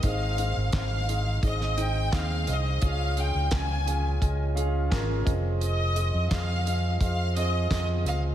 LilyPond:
<<
  \new Staff \with { instrumentName = "Violin section" } { \time 4/4 \key aes \major \tempo 4 = 86 f''4 f''4 ees''8 g''8 f''8 ees''8 | f''8 g''8 aes''4 r2 | ees''4 f''4 f''8 ees''8 ees''8 f''8 | }
  \new Staff \with { instrumentName = "Grand piano" } { \time 4/4 \key aes \major <c' ees' aes' ees''>8 <c' ees' aes' c''>8 <c' ees' aes' ees''>8 <c' ees' aes' ees''>8 <c' ees' aes' ees''>8 <c' ees' aes' ees''>8 <c' ees' aes' f''>8 <c' ees' aes' ees''>8 | <des' f' aes' f''>8 <des' f' aes' f''>8 <des' f' aes' aes''>8 <des' f' aes' f''>8 <des' f' aes' ees''>8 <des' f' aes' f''>8 <des' f' aes' bes'>8 <c' f' aes' ees''>8~ | <c' f' aes' ees''>8 <c' f' aes' ees''>8 <c' f' aes' ees''>8 <c' f' aes' ees''>8 <c' f' aes' ees''>8 <c' f' aes' ees''>8 <c' f' aes' ees''>8 <c' f' aes' ees''>8 | }
  \new Staff \with { instrumentName = "Grand piano" } { \clef bass \time 4/4 \key aes \major aes,4. r2 r8 | des4. r2 r8 | r1 | }
  \new Staff \with { instrumentName = "Fingered electric bass" } { \clef bass \time 4/4 \key aes \major aes,,8. aes,,16 r4 aes,,4 ees,8 c,8 | des,8. des,16 des,4 des,4 aes,,8 f,,8~ | f,,8. f,16 f,4 f,4 f,8 des,8 | }
  \new DrumStaff \with { instrumentName = "Drums" } \drummode { \time 4/4 <hh bd>8 hh8 <hc hh bd sn>8 hh8 <hh bd>16 sn16 hh8 <hc hh bd sn>8 hh8 | <hh bd>8 hh8 <hc hh bd sn>8 hh8 <hh bd>8 hh8 <hc hh bd sn>8 <hh bd>8 | hh8 hh8 <hc hh bd sn>8 hh8 <hh bd>8 hh8 <hc hh bd sn>8 hh8 | }
>>